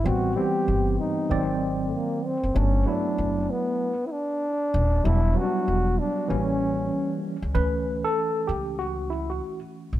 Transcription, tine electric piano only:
0.04 0.31 E3 medium
0.04 0.32 G3 medium
0.04 0.32 B3 medium
0.04 0.32 C4 medium
0.35 1.29 E3 medium
0.35 1.30 G3 medium
0.35 1.30 B3 medium
0.35 1.30 C4 medium
1.29 2.36 D#3 medium
1.29 2.36 F#3 medium
1.29 2.37 C4 medium
1.29 2.37 D5 medium
2.55 2.82 F#3 medium
2.55 2.82 A3 medium
2.55 2.82 B3 medium
2.55 2.83 D4 medium
2.86 3.92 F#3 medium
2.86 3.93 A3 medium
2.86 3.93 B3 medium
2.86 3.93 E4 medium
5.04 5.31 F#3 medium
5.04 5.32 G3 medium
5.04 5.32 B3 medium
5.04 5.33 D4 medium
5.35 6.29 F#3 medium
5.35 6.28 G3 medium
5.35 6.30 B3 medium
5.35 5.44 C#4 medium
5.43 6.33 D4 medium
6.28 7.35 E3 medium
6.28 7.36 G3 medium
6.28 7.36 A#3 medium
6.28 7.36 C#4 medium
7.54 10.00 E3 medium
7.54 10.00 A3 soft
7.54 10.00 C#4 medium
7.54 8.06 B4 loud
8.04 8.50 A4 medium
8.47 8.80 G4 medium
8.79 9.11 F#4 medium
9.10 9.30 E4 medium
9.30 9.59 F#4 medium

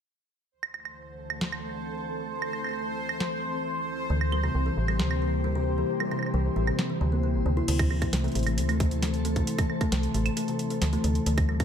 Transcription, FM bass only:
4.10 4.49 D2 loud
4.55 4.70 C2 medium
4.77 5.01 A1 medium
5.00 5.83 D2 medium
6.34 6.49 C2 medium
6.56 6.71 A1 medium
7.01 7.36 D2 medium
7.35 7.42 A1 loud
7.46 7.61 D2 medium
7.68 8.07 D2 loud
8.13 8.28 C2 medium
8.35 8.59 A1 medium
8.58 9.42 D2 medium
9.92 10.07 C2 medium
10.14 10.30 A1 medium
10.82 10.97 D2 medium
11.04 11.19 D2 medium
11.26 11.65 D2 medium

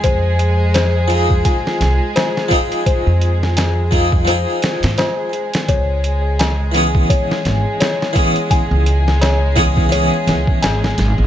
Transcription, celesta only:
0.04 0.38 C5 loud
0.75 0.97 C5 loud
1.45 2.12 G#5 medium
2.16 2.49 C5 medium
2.86 3.09 C5 medium
3.57 4.24 G#5 medium
4.28 4.61 C5 loud
4.98 5.20 C5 loud
5.69 5.91 C#5 loud
6.39 7.07 G#5 medium
7.10 7.43 C#5 medium
7.80 8.03 C#5 medium
8.51 9.18 G#5 medium
9.22 9.55 C#5 medium
9.92 10.14 C#5 loud
10.62 11.27 G#5 medium

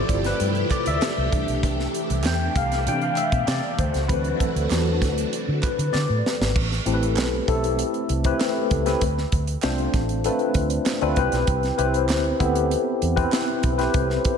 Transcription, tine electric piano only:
0.00 1.28 F3 medium
0.00 1.28 A3 medium
0.00 1.29 C4 medium
0.00 1.34 A4 medium
0.00 0.27 C5 medium
0.00 0.72 D5 loud
0.26 0.73 B4 loud
0.72 0.87 D5 loud
0.87 1.75 E5 loud
1.32 1.73 E3 medium
1.32 1.74 A3 soft
1.32 1.74 D4 medium
2.26 2.57 G5 loud
2.57 2.88 F5 loud
2.87 3.15 E3 medium
2.87 3.15 A3 soft
2.87 3.15 D4 medium
2.87 3.03 G5 loud
3.03 3.18 F5 medium
3.17 3.49 E5 medium
3.48 3.80 D5 loud
3.79 4.11 C5 medium
4.08 6.51 E3 medium
4.08 6.51 F#3 medium
4.08 6.51 C4 medium
4.08 4.41 B4 loud
4.39 4.68 A4 medium
5.62 5.94 B4 medium
5.93 6.51 D5 loud
6.86 7.37 A3 medium
6.86 7.37 C4 medium
6.86 7.38 E4 medium
6.86 7.38 G4 medium
6.86 6.93 A4 medium
6.94 7.41 B4 medium
7.48 8.12 A3 medium
7.48 8.12 C4 medium
7.48 8.12 E4 medium
7.48 8.12 G4 medium
7.48 8.12 A4 loud
8.25 8.76 A3 loud
8.25 8.76 C4 medium
8.25 8.76 E4 medium
8.25 8.77 G4 medium
8.25 8.77 B4 loud
8.86 9.01 A3 medium
8.86 9.01 C4 medium
8.86 9.01 E4 medium
8.86 9.02 G4 medium
8.86 9.02 B4 loud
9.62 10.14 A3 loud
9.62 10.14 C4 medium
9.62 10.14 D4 loud
9.62 10.14 F4 medium
9.62 10.15 C5 loud
10.25 10.89 A3 medium
10.25 10.89 C4 medium
10.25 10.89 D4 medium
10.25 10.89 F4 medium
10.25 10.89 B4 loud
11.02 11.17 A3 loud
11.02 11.17 C4 loud
11.02 11.17 D4 loud
11.02 11.17 F4 loud
11.02 11.17 B4 loud
11.18 11.69 C4 medium
11.18 11.69 E4 medium
11.18 11.69 G4 medium
11.18 11.69 B4 medium
11.18 11.69 C5 loud
11.78 12.30 C4 medium
11.78 12.30 E4 medium
11.78 12.30 G4 medium
11.78 12.29 B4 medium
11.78 12.30 C5 loud
12.40 13.04 B3 loud
12.40 13.04 C4 medium
12.40 13.04 E4 medium
12.40 13.05 G4 medium
12.40 13.04 A4 medium
13.16 13.68 C4 loud
13.16 13.68 E4 medium
13.16 13.68 G4 medium
13.16 13.68 B4 loud
13.16 13.68 C5 loud
13.78 14.38 C4 medium
13.78 14.38 E4 medium
13.78 14.38 G4 medium
13.78 14.38 B4 medium
13.78 14.38 C5 loud

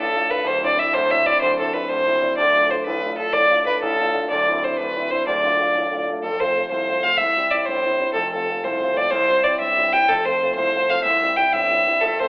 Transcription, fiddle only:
0.00 0.32 A4 loud
0.31 0.49 B4 loud
0.47 0.64 C5 loud
0.66 0.81 D5 medium
0.79 0.95 E5 medium
0.94 1.12 C5 loud
1.11 1.28 E5 loud
1.26 1.41 D5 loud
1.41 1.58 C5 loud
1.59 1.75 A4 medium
1.74 1.91 B4 medium
1.90 2.37 C5 loud
2.37 2.72 D5 loud
2.71 2.86 C5 medium
2.86 3.17 B4 medium
3.18 3.35 A4 medium
3.33 3.66 D5 loud
3.66 3.81 B4 medium
3.83 4.27 A4 loud
4.30 4.65 D5 medium
4.64 4.79 C5 medium
4.77 5.12 B4 loud
5.11 5.26 C5 loud
5.27 6.04 D5 medium
6.23 6.42 A4 medium
6.40 6.70 C5 medium
6.71 7.05 C5 medium
7.03 7.19 F5 loud
7.17 7.52 E5 loud
7.51 7.67 D5 medium
7.66 8.13 C5 medium
8.13 8.31 A4 medium
8.33 8.66 A4 medium
8.64 8.98 C5 medium
8.97 9.12 D5 loud
9.11 9.45 C5 loud
9.44 9.59 D5 medium
9.60 9.94 E5 medium
9.93 10.10 G5 loud
10.09 10.26 A4 loud
10.25 10.54 C5 loud
10.55 10.91 C5 loud
10.90 11.03 F5 loud
11.04 11.38 E5 loud
11.36 11.54 G5 medium
11.53 12.02 E5 loud
12.01 12.21 A4 medium
12.20 12.28 C5 loud

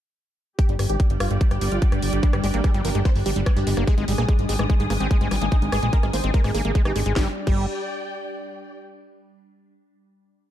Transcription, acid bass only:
2.23 2.28 G3 medium
2.33 2.36 G3 medium
2.44 2.46 G#3 loud
2.54 2.61 A#3 medium
2.64 2.71 G3 medium
2.74 2.81 G3 loud
2.85 2.89 F3 medium
2.95 3.00 G#3 medium
3.05 3.10 G3 medium
3.26 3.30 G3 medium
3.36 3.41 G3 medium
3.46 3.51 G3 medium
3.57 3.59 G3 medium
3.67 3.70 G#3 loud
3.77 3.84 A#3 medium
3.87 3.94 G#3 medium
3.98 4.05 G#3 loud
4.08 4.13 G3 medium
4.18 4.23 A#3 medium
4.29 4.33 G#3 medium
4.49 4.54 G#3 medium
4.59 4.64 G#3 medium
4.70 4.74 G#3 medium
4.80 4.83 G#3 medium
4.90 4.93 A#3 loud
5.00 5.07 C4 medium
5.11 5.18 G#3 medium
5.21 5.28 G#3 loud
5.31 5.36 G3 medium
5.42 5.46 A#3 medium
5.52 5.56 G#3 medium
5.72 5.77 G#3 medium
5.83 5.87 G#3 medium
5.93 5.98 G#3 medium
6.03 6.06 G#3 medium
6.13 6.16 A#3 loud
6.24 6.31 C4 medium
6.34 6.41 G#3 medium
6.44 6.51 G#3 loud
6.55 6.62 A#3 medium
6.65 6.72 A#3 medium
6.75 6.82 G#3 medium
6.85 6.92 D#4 medium
6.96 7.00 G#3 medium
7.06 7.13 G#3 medium
7.16 7.28 G3 medium
7.47 7.66 G3 medium

